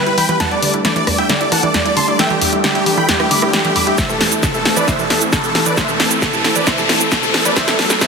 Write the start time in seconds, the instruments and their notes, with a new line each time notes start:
Already playing: riser
0.06 analog synth pad G3 B3 E4 B4, synth pluck E4, grand piano B4, supersaw synth B4, closed hi-hat
0.18 synth pluck E3, supersaw synth G5 B5, grand piano B5, open hi-hat
0.29 synth pluck E3, analog synth pad G3 B3 E4 B4, grand piano B4, supersaw synth B4, closed hi-hat
0.40 synth pluck E2, analog synth pad G3 A3 D4 A4, supersaw synth F#5 A5, grand piano A5, snare, closed hi-hat
0.51 analog synth pad G3 A3 D4 A4, synth pluck E4, grand piano D5, supersaw synth D5, closed hi-hat
0.62 synth pluck D3, analog synth pad G3 A3 D4 A4, grand piano D5, supersaw synth D5, open hi-hat
0.74 synth pluck E4, closed hi-hat
0.85 synth pluck E3, analog synth pad G3 A3 D4 A4, grand piano D5, supersaw synth D5, snare, closed hi-hat
0.96 synth pluck E3, analog synth pad G3 A3 D4 A4, grand piano D5, supersaw synth D5, closed hi-hat
1.07 synth pluck E2, analog synth pad G3 A3 D4 A4, grand piano D5, supersaw synth D5, cross-stick, open hi-hat
1.18 synth pluck E4, supersaw synth E5 G5, grand piano G5, closed hi-hat
1.29 synth pluck D3, grand piano D5, supersaw synth D5, snare, closed hi-hat
1.41 analog synth pad G3 A3 D4 A4, synth pluck E4, supersaw synth D5, grand piano D5, closed hi-hat
1.52 synth pluck E3, analog synth pad G3 A3 D4 A4, supersaw synth F#5 A5, grand piano A5, cross-stick, open hi-hat
1.63 synth pluck E3, supersaw synth D5, grand piano D5, closed hi-hat
1.74 synth pluck E2, supersaw synth D5, grand piano D5, snare, closed hi-hat
1.85 analog synth pad G3 A3 D4 A4, synth pluck E4, supersaw synth D5, grand piano D5, closed hi-hat
1.97 synth pluck D3, supersaw synth A5 C6, grand piano C6, open hi-hat
2.08 analog synth pad G3 A3 D4 A4, synth pluck E4, grand piano D5, supersaw synth D5, closed hi-hat
2.19 synth pluck E3, analog synth pad G3 A3 D4 G4, supersaw synth E5 G5, grand piano G5, snare, closed hi-hat
2.30 synth pluck E3, analog synth pad G3 A3 D4 G4, grand piano G4, supersaw synth G4, closed hi-hat
2.41 synth pluck E2, analog synth pad G3 A3 D4 G4, grand piano G4, supersaw synth G4, open hi-hat
2.53 synth pluck E4, closed hi-hat
2.64 synth pluck D3, analog synth pad G3 A3 D4 G4, grand piano G4, supersaw synth G4, snare, closed hi-hat
2.75 analog synth pad G3 A3 D4 G4, synth pluck E4, grand piano G4, supersaw synth G4, closed hi-hat
2.86 synth pluck E3, analog synth pad G3 A3 D4 G4, grand piano G4, supersaw synth G4, open hi-hat
2.97 synth pluck E3, supersaw synth G5 B5, grand piano B5
3.08 synth pluck E2, grand piano G4, supersaw synth G4, snare, closed hi-hat
3.20 analog synth pad G3 A3 D4 G4, synth pluck E4, grand piano G4, supersaw synth G4, cross-stick, closed hi-hat
3.31 synth pluck D3, analog synth pad G3 A3 D4 G4, supersaw synth B5 D6, grand piano D6, open hi-hat
3.42 synth pluck E4, supersaw synth G4, grand piano G4, cross-stick
3.53 synth pluck E3, grand piano G4, supersaw synth G4, snare, closed hi-hat
3.64 synth pluck E3, analog synth pad G3 A3 D4 G4, supersaw synth G4, grand piano G4, closed hi-hat
3.76 synth pluck E2, supersaw synth B5 D6, grand piano D6, open hi-hat
3.87 analog synth pad G3 A3 D4 G4, synth pluck E4, supersaw synth G4, grand piano G4, closed hi-hat
3.98 synth pluck E3, analog synth pad E3 A3 C4 A4, supersaw synth C5 E5, grand piano E5, kick, snare, closed hi-hat, shaker
4.09 analog synth pad E3 A3 C4 A4, synth pluck E3, supersaw synth A4, grand piano A4, closed hi-hat, shaker
4.20 synth pluck E2, analog synth pad E3 A3 C4 A4, supersaw synth A4, grand piano A4, snare, open hi-hat
4.32 synth pluck E4, closed hi-hat, shaker
4.43 synth pluck D3, analog synth pad E3 A3 C4 A4, supersaw synth A4, grand piano A4, kick, snare, closed hi-hat, shaker
4.54 analog synth pad E3 A3 C4 A4, synth pluck E4, grand piano A4, supersaw synth A4, closed hi-hat, shaker
4.65 analog synth pad E3 A3 C4 A4, synth pluck E3, supersaw synth A4, grand piano A4, snare, open hi-hat
4.76 synth pluck E3, supersaw synth B4 D5, grand piano D5, closed hi-hat, shaker
4.88 synth pluck E3, supersaw synth C5 E5, grand piano E5, kick, snare, closed hi-hat, shaker
4.99 synth pluck E3, analog synth pad E3 A3 C4 A4, grand piano A4, supersaw synth A4, closed hi-hat, shaker
5.10 synth pluck E2, analog synth pad E3 A3 C4 A4, grand piano A4, supersaw synth A4, snare, open hi-hat
5.21 synth pluck E4, closed hi-hat, shaker
5.32 synth pluck D3, grand piano A4, supersaw synth A4, kick, snare, closed hi-hat, shaker
5.44 analog synth pad E3 A3 C4 A4, synth pluck E4, grand piano A4, supersaw synth A4, closed hi-hat, shaker
5.55 synth pluck E3, grand piano A4, supersaw synth A4, snare, open hi-hat
5.66 synth pluck E3, analog synth pad E3 A3 C4 A4, supersaw synth B4 D5, grand piano D5, closed hi-hat, shaker
5.77 analog synth pad E3 A3 C4 A4, synth pluck E3, supersaw synth C5 E5, grand piano E5, kick, snare, closed hi-hat, shaker
5.88 synth pluck E3, analog synth pad E3 A3 C4 A4, supersaw synth A4, grand piano A4, closed hi-hat, shaker
6.00 synth pluck E2, analog synth pad E3 A3 C4 A4, grand piano A4, supersaw synth A4, snare, open hi-hat
6.11 synth pluck E4, shaker
6.22 synth pluck D3, analog synth pad E3 A3 C4 A4, grand piano A4, supersaw synth A4, kick, snare, closed hi-hat, shaker
6.33 analog synth pad E3 A3 C4 A4, synth pluck E4, grand piano A4, supersaw synth A4, closed hi-hat, shaker
6.44 synth pluck E3, analog synth pad E3 A3 C4 A4, grand piano A4, supersaw synth A4, snare, open hi-hat
6.56 synth pluck E3, supersaw synth B4 D5, grand piano D5, closed hi-hat, shaker
6.67 synth pluck E3, supersaw synth C5 E5, grand piano E5, kick, snare, closed hi-hat, shaker
6.78 synth pluck E3, analog synth pad E3 A3 C4 A4, grand piano A4, supersaw synth A4, closed hi-hat, shaker
6.89 synth pluck E2, analog synth pad E3 A3 C4 A4, grand piano A4, supersaw synth A4, snare, open hi-hat
7.00 synth pluck E4, closed hi-hat, shaker
7.12 synth pluck D3, grand piano A4, supersaw synth A4, kick, snare, closed hi-hat, shaker
7.23 analog synth pad E3 A3 C4 A4, synth pluck E4, grand piano A4, supersaw synth A4, closed hi-hat, shaker
7.34 synth pluck E3, grand piano A4, supersaw synth A4, snare, open hi-hat
7.45 synth pluck E3, analog synth pad E3 A3 C4 A4, supersaw synth B4 D5, grand piano D5, closed hi-hat, shaker
7.56 synth pluck E3, analog synth pad F#3 A3 D4 A4, supersaw synth C5 E5, grand piano E5, kick, snare, closed hi-hat, shaker
7.68 synth pluck E3, analog synth pad F#3 A3 D4 A4, supersaw synth A4, grand piano A4, snare, closed hi-hat, shaker
7.79 synth pluck E2, analog synth pad F#3 A3 D4 A4, supersaw synth A4, grand piano A4, snare, open hi-hat
7.90 synth pluck E4, snare, shaker
8.01 synth pluck E3, analog synth pad F#3 A3 D4 A4, supersaw synth C5 E5, grand piano E5, kick, snare, closed hi-hat, shaker